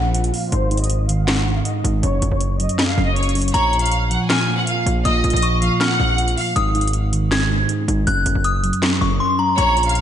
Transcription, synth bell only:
3.54 4.26 A#5 loud
4.30 5.01 F6 medium
5.05 5.41 D#6 medium
5.43 5.78 C#6 medium
5.80 6.16 F6 medium
6.56 7.27 D#6 medium
7.31 8.03 G#6 medium
8.07 8.42 F#6 loud
8.45 8.98 D#6 medium
9.01 9.19 C#6 medium
9.20 9.38 C6 medium
9.39 9.57 A#5 medium
9.58 10.01 A#5 loud

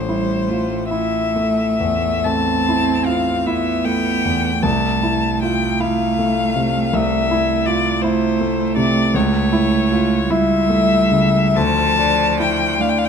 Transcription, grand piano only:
0.00 2.21 A1 soft
0.09 0.75 E4 soft
0.50 0.91 F4 soft
0.91 1.62 E4 soft
1.36 2.09 A3 soft
1.80 2.51 E2 soft
2.26 2.92 A3 soft
2.69 3.31 E4 soft
3.08 3.46 F4 soft
3.47 4.08 E4 soft
3.85 4.48 A3 soft
4.25 4.64 E2 soft
4.63 6.88 C2 soft
5.03 5.65 E4 soft
5.43 5.81 F4 soft
5.80 6.40 E4 soft
6.18 6.78 A3 soft
6.56 7.14 C3 soft
6.93 9.11 C2 soft
7.31 7.88 E4 soft
7.67 8.03 F4 soft
8.04 8.63 E4 soft
8.40 9.00 A3 soft
8.77 9.14 C3 soft
9.14 11.52 C#2 soft
9.53 10.15 E4 soft
9.92 10.30 F4 soft
10.30 10.95 E4 soft
10.69 11.38 A3 soft
11.12 11.55 C#3 soft
11.56 13.09 D2 soft
11.99 12.64 D4 soft
12.40 12.80 E4 soft
12.80 13.09 D4 soft

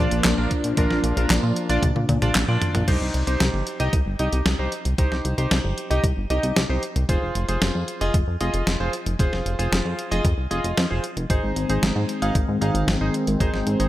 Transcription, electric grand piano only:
0.00 0.35 D4 medium
0.00 0.35 F4 medium
0.00 0.35 D5 medium
0.38 0.49 D4 medium
0.38 0.49 F4 medium
0.38 0.49 A#4 medium
0.77 1.14 D4 medium
0.77 1.14 F4 medium
0.77 1.14 A#4 medium
1.17 1.66 D4 medium
1.17 1.66 F4 medium
1.17 1.66 A#4 medium
1.70 1.81 D4 medium
1.70 1.81 F4 medium
1.70 1.81 D5 loud
2.22 2.34 D4 medium
2.22 2.34 F4 medium
2.22 2.34 D5 medium
2.48 2.85 D4 medium
2.48 2.85 F4 medium
2.48 2.85 D5 medium
2.88 3.24 D#4 medium
2.88 3.24 G4 medium
2.88 3.24 C5 medium
3.27 3.77 D#4 medium
3.27 3.77 G4 medium
3.27 3.77 C5 medium
3.80 3.91 D#4 medium
3.80 3.91 G4 medium
3.80 3.91 D#5 loud
4.19 4.56 D#4 medium
4.19 4.56 G4 medium
4.19 4.56 D#5 medium
4.59 4.70 D#4 medium
4.59 4.70 G4 medium
4.59 4.70 C5 medium
4.98 5.35 D#4 medium
4.98 5.35 G4 medium
4.98 5.35 C5 medium
5.38 5.87 D#4 medium
5.38 5.87 G4 medium
5.38 5.87 C5 medium
5.90 6.02 D#4 medium
5.90 6.02 G4 medium
5.90 6.02 D#5 loud
6.30 6.66 D#4 medium
6.30 6.66 G4 medium
6.30 6.66 D#5 medium
6.69 6.81 D#4 medium
6.69 6.81 G4 medium
6.69 6.81 C5 medium
7.09 7.45 F4 medium
7.09 7.45 G#4 medium
7.09 7.45 C5 medium
7.48 7.98 F4 medium
7.48 7.98 G#4 medium
7.48 7.98 C5 medium
8.01 8.13 F4 medium
8.01 8.13 G#4 medium
8.01 8.12 D#5 loud
8.41 8.77 F4 medium
8.41 8.77 G#4 medium
8.41 8.77 D#5 medium
8.80 8.92 F4 medium
8.80 8.92 G#4 medium
8.80 8.92 C5 medium
9.19 9.56 F4 medium
9.19 9.56 G#4 medium
9.19 9.56 C5 medium
9.59 10.08 F4 medium
9.59 10.08 G#4 medium
9.59 10.08 C5 medium
10.11 10.23 F4 medium
10.11 10.23 G#4 medium
10.11 10.23 D#5 loud
10.51 10.87 F4 medium
10.51 10.87 G#4 medium
10.51 10.87 D#5 medium
10.90 11.02 F4 medium
10.90 11.02 G#4 medium
10.90 11.02 C5 medium
11.30 11.66 D#4 medium
11.30 11.66 G#4 medium
11.30 11.66 C5 medium
11.70 12.19 D#4 medium
11.70 12.19 G#4 medium
11.70 12.19 C5 medium
12.22 12.34 D#4 medium
12.22 12.34 G#4 medium
12.22 12.34 F5 loud
12.61 12.98 D#4 medium
12.61 12.98 G#4 medium
12.61 12.98 F5 medium
13.01 13.12 D#4 medium
13.01 13.12 G#4 medium
13.01 13.12 C5 medium
13.40 13.77 D#4 medium
13.40 13.77 G#4 medium
13.40 13.77 C5 medium
13.80 13.88 D#4 medium
13.80 13.88 G#4 medium
13.80 13.88 C5 medium

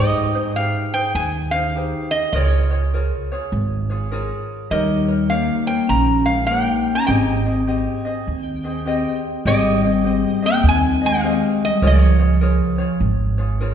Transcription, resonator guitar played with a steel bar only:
0.00 0.56 D#5 medium
0.56 0.93 F5 medium
0.94 1.15 G5 medium
1.15 1.54 G#5 medium
1.51 2.11 F5 medium
2.11 2.34 D#5 medium
2.33 3.48 C#5 medium
4.71 5.32 D#5 medium
5.30 5.67 F5 medium
5.67 5.90 G5 medium
5.89 6.28 A#5 medium
6.26 6.46 F5 medium
6.47 6.65 F#5 medium
6.65 6.98 G5 medium
6.95 7.06 A#5 medium
7.07 8.41 G#5 medium
8.41 9.19 G5 medium
9.47 10.46 D#5 medium
10.46 10.67 G5 medium
10.69 11.05 G#5 medium
11.06 11.64 F5 medium
11.65 11.85 D#5 loud
11.87 12.99 C#5 medium

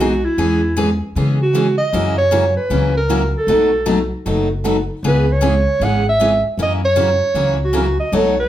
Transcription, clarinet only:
0.00 0.26 F#4 medium
0.24 1.02 E4 medium
1.42 1.77 F#4 medium
1.78 2.14 D#5 loud
2.18 2.54 C#5 loud
2.57 2.93 B4 medium
2.97 3.32 A#4 medium
3.37 4.09 A4 medium
5.08 5.34 B4 medium
5.33 5.85 C#5 loud
5.84 6.07 F#5 loud
6.09 6.43 E5 loud
6.63 6.73 D#5 medium
6.85 7.57 C#5 loud
7.64 7.98 F#4 medium
8.00 8.16 D#5 medium
8.14 8.38 C#5 loud
8.39 8.48 B4 medium

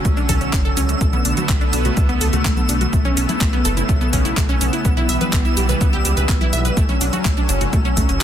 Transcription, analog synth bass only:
0.05 0.23 B1 loud
0.29 0.38 B1 loud
0.41 0.50 B1 medium
0.53 0.71 F#1 medium
0.77 0.95 C#2 medium
1.01 1.19 B1 loud
1.25 1.34 B1 medium
1.49 1.58 B1 loud
1.73 1.91 B1 loud
1.97 2.15 C#2 loud
2.21 2.30 C#2 medium
2.33 2.42 C#2 medium
2.45 2.63 B1 medium
2.69 2.87 B1 medium
2.93 3.11 B1 loud
3.17 3.26 B1 medium
3.41 3.59 B1 loud
3.65 3.83 F#1 loud
3.89 4.07 B1 loud
4.13 4.22 B1 loud
4.25 4.34 B1 medium
4.37 4.55 B1 medium
4.61 4.70 B1 loud
4.85 5.03 B1 loud
5.09 5.18 B1 medium
5.33 5.42 B1 loud
5.57 5.75 B1 loud
5.81 5.99 C#2 loud
6.05 6.14 C#2 medium
6.17 6.26 C#2 medium
6.29 6.47 B1 medium
6.53 6.71 B1 medium
6.77 6.95 B1 medium
7.01 7.10 B1 medium
7.25 7.43 B1 loud
7.49 7.67 F#1 loud
7.73 7.91 B1 loud
7.97 8.06 B1 loud
8.09 8.18 F#1 medium

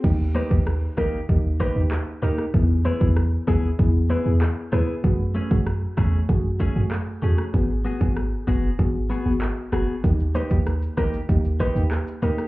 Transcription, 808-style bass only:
0.04 0.40 D#2 loud
0.51 0.87 D#2 loud
0.98 1.22 D2 medium
1.29 1.65 D#2 loud
1.76 2.00 D#2 medium
2.23 2.35 D2 medium
2.54 2.90 E2 loud
3.01 3.37 E2 medium
3.48 3.72 D#2 medium
3.79 4.15 E2 loud
4.26 4.50 E2 loud
4.73 4.85 D#2 loud
5.04 5.40 F#2 loud
5.51 5.87 F#2 loud
5.98 6.22 E2 loud
6.29 6.65 F#2 loud
6.76 7.00 F#2 loud
7.23 7.35 E2 loud
7.54 7.90 G#1 loud
8.01 8.37 G#1 loud
8.48 8.72 F#1 medium
8.79 9.15 G#1 loud
9.26 9.50 G#1 medium
9.73 9.85 F#1 loud
10.04 10.40 D#2 loud
10.51 10.87 D#2 loud
10.98 11.22 D2 medium
11.29 11.65 D#2 loud
11.76 12.00 D#2 medium
12.23 12.35 D2 medium

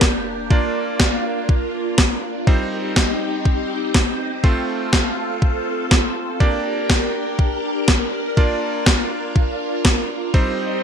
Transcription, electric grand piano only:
0.00 0.47 A#3 medium
0.00 0.47 D4 medium
0.00 0.47 G4 medium
0.00 0.47 D5 medium
0.50 2.44 A#3 medium
0.50 2.44 D4 medium
0.50 2.44 F4 medium
0.50 2.44 D5 medium
2.47 4.41 G3 medium
2.47 4.41 C4 medium
2.47 4.41 D#4 medium
2.47 4.41 C5 medium
4.44 6.37 A3 medium
4.44 6.37 C4 medium
4.44 6.37 F4 medium
4.44 6.37 C5 medium
6.40 8.34 A#3 medium
6.40 8.34 D4 medium
6.40 8.34 G4 medium
6.40 8.34 D5 medium
8.37 10.31 A#3 medium
8.37 10.31 D4 medium
8.37 10.31 F4 medium
8.37 10.31 D5 medium
10.34 10.83 G3 medium
10.34 10.83 C4 medium
10.34 10.83 D#4 medium
10.34 10.83 C5 medium

